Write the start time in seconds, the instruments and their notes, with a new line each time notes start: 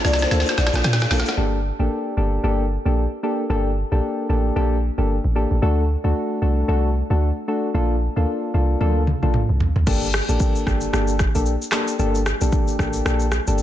0.04 log drum bass C2, synth keys A#3 D4 F4 A4, marimba D5, snare, open hi-hat, shaker
0.13 snare
0.19 marimba C5, snare, shaker
0.31 log drum bass D2, synth keys A#3 D4 F4 A4, marimba C5, snare, shaker
0.40 snare
0.46 snare, shaker
0.57 log drum bass A#1, marimba D5, snare, shaker
0.67 snare
0.73 log drum bass A#1, synth keys A#3 D4 F4 A4, snare, shaker
0.84 log drum bass A#2, snare, shaker
0.93 snare
1.00 snare, shaker
1.11 log drum bass A#1, synth keys A#3 D4 F4 A4, snare, open hi-hat, shaker
1.20 snare
1.26 snare, shaker
1.37 log drum bass G1, synth keys A#3 D4 G4 A4
1.79 log drum bass A1, synth keys A#3 D4 G4 A4
2.17 log drum bass G1, synth keys A#3 D4 G4 A4
2.44 log drum bass G1, synth keys A#3 D4 G4 A4
2.85 log drum bass A#1, synth keys A#3 D4 G4 A4
3.23 synth keys A#3 D4 G4 A4
3.50 log drum bass G1, synth keys A#3 D4 G4 A4
3.92 log drum bass A#1, synth keys A#3 D4 G4 A4
4.29 log drum bass A1, synth keys A#3 D4 G4 A4
4.56 log drum bass A#1, synth keys A#3 D4 G4 A4
4.98 log drum bass G1, synth keys A#3 D4 G4 A4
5.24 log drum bass A1
5.35 synth keys A#3 D4 G4 A4
5.51 log drum bass A1
5.62 log drum bass D2, synth keys A3 D4 F#4 A4
6.04 log drum bass D2, synth keys A3 D4 F#4 A4
6.42 log drum bass C2, synth keys A3 D4 F#4 A4
6.68 log drum bass C2, synth keys A3 D4 F#4 A4
7.10 log drum bass D2, synth keys A3 D4 F#4 A4
7.48 synth keys A3 D4 F#4 A4
7.74 log drum bass A#1, synth keys A#3 D4 F4 A4
8.16 log drum bass D2, synth keys A#3 D4 F4 A4
8.54 log drum bass C2, synth keys A#3 D4 F4 A4
8.80 log drum bass D2, synth keys A#3 D4 F4 A4, high tom
9.07 mid tom
9.22 log drum bass A#1, synth keys A#3 D4 F4 A4, mid tom
9.34 mid tom
9.49 log drum bass C2
9.60 floor tom
9.76 log drum bass D2, floor tom
9.87 log drum bass G1, synth keys A#3 D4 G4 A4, kick, crash, shaker
10.02 shaker
10.14 cross-stick, shaker
10.29 log drum bass A1, synth keys A#3 D4 G4 A4, shaker
10.40 kick, shaker
10.55 shaker
10.66 log drum bass G1, synth keys A#3 D4 G4 A4, kick, cross-stick, shaker
10.81 shaker
10.93 log drum bass G1, synth keys A#3 D4 G4 A4, cross-stick, shaker
11.08 shaker
11.19 kick, cross-stick, shaker
11.35 log drum bass A#1, synth keys A#3 D4 G4 A4, shaker
11.46 shaker
11.62 shaker
11.72 synth keys A#3 D4 G4 A4, cross-stick, clap, shaker
11.88 shaker
11.99 log drum bass G1, synth keys A#3 D4 G4 A4, shaker
12.15 shaker
12.26 cross-stick, shaker
12.41 log drum bass A#1, synth keys A#3 D4 G4 A4, shaker
12.52 kick, shaker
12.68 shaker
12.79 log drum bass A1, synth keys A#3 D4 G4 A4, kick, cross-stick, shaker
12.93 shaker
13.05 log drum bass A#1, synth keys A#3 D4 G4 A4, cross-stick, shaker
13.20 shaker
13.32 cross-stick, shaker
13.47 log drum bass G1, synth keys A#3 D4 G4 A4, shaker
13.58 shaker